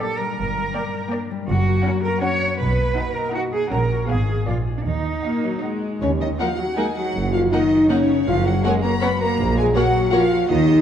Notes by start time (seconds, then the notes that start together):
Already playing: A#2 G3 A#4 D5
0.01 A#3 D4 A4 D5 G5
0.20 G3 A#4
0.38 G1 G2
0.57 G3
0.75 A#3 D4 D5 G5
0.94 A#4
1.12 A#3 D4 D5 G5
1.31 G3
1.49 F#1 F#2 F#4
1.68 A#3
1.85 C#4 F#4 F#5 A#5
2.04 A#4 C#5
2.23 C#4 F#4 C#5 F#5 A#5
2.42 A#3
2.60 B1 B2 B4
2.79 A#3
2.97 D#4 F#4 F#5 A#5
3.15 A#4 D#5
3.35 D#4 F#4 F#5 A#5
3.53 A#3 G#4
3.71 A#1 A#2 C#4 A#4 F#5 A#5
3.91 F#4 C#5
4.09 G#1 G#2 B3 G#4 F5 B5
4.28 F4 G#4
4.47 A#1 A#2 A#3 F4 D5 G#5
4.67 D4 G#4
4.77 D4
4.86 D#2 D#3 D#4
5.06 D#4
5.25 A#3 F#4 D#5 F#5
5.45 F#3 A#4
5.63 G#3 F#4 D#5 F#5
5.83 D#4
6.01 D#2 C#3 D#3 C#4 C#5
6.21 D#3 D#4 D#5
6.39 F3 A#3 D#4 F4 A#4 F5 F#5
6.58 F#3 F#4 F#5
6.77 G#3 A#3 D#4 G#4 A#4 D#5 F#5 G#5
6.96 F#3 F#4 A#4 F#5
7.15 F#1 F#2
7.32 F3 A#3 F4 F5
7.51 D#3 A#3 D#4 F#4 A#4 D#5 F#5
7.71 D#5
7.89 C#3 A#3 C#4 D#4 A#4 C#5 F#5
8.08 F#4
8.26 F#1 F#2 F3 F4 F5
8.45 F#3 A#3 F#4 F#5
8.63 G#3 A#3 F#4 G#4 A#4 C#5 F#5 G#5
8.83 A#3 A#4 C#5 A#5
9.01 A#3 B3 A#4 B4 C#5 F#5 B5
9.20 A#3 F#4 A#4 A#5
9.39 A#1 A#2
9.57 G#3 A#3 G#4 G#5
9.75 F#3 A#3 F#4 A#4 C#5 F#5
9.94 C#5
10.11 F3 A#3 F4 A#4 C#5 F5 F#5
10.31 F#4
10.49 D#2 D#3 D#4 D#5
10.68 D#4